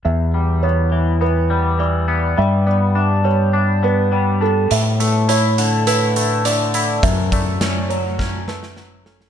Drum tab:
HH |----------------|----------------|x-x-x-x-x-x-x-x-|x-x-x-x---------|
SD |----------------|----------------|----------------|----o---o-ooo-oo|
BD |----------------|----------------|----------------|o-o-----o-------|